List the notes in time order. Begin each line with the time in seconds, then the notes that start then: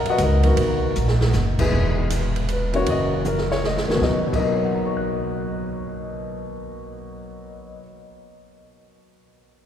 Already playing: B1
0.06 F#5, ride
0.10 F#4 B4 D#5
0.18 C#2, kick, hi-hat pedal, ride
0.23 D#4 A#4 B4 D#5
0.43 D#3 A#3 B3 F#4, ride
0.57 B1, kick, ride
0.95 A#1, hi-hat pedal
1.08 snare
1.21 snare
1.33 F#1, snare, hi-hat pedal
1.59 E3 B3 D#4 G#4, kick, crash
1.72 E1, kick
2.10 hi-hat pedal, ride
2.36 ride
2.48 B4, hi-hat pedal, ride
2.73 E3 A#3 C#4 F#4 C#5, ride
2.86 F#1, kick, ride
2.90 D#5
3.14 F#4
3.25 A#4, hi-hat pedal, mid tom
3.38 snare
3.51 C#5, snare
3.64 D#5, snare
3.77 snare
3.88 D#3 A#3 B3 F#4, muted upright bass stroke, snare
3.96 B2
4.01 B1 F#3 A#3 D#5, kick, snare
4.09 D#4
4.27 B2 F#3
4.33 B1 A#3 D#5, kick, crash
4.39 D#4 F#4
4.47 A#4
4.56 C#5
4.65 F#5
4.75 A#5
4.85 C#6
4.97 F#6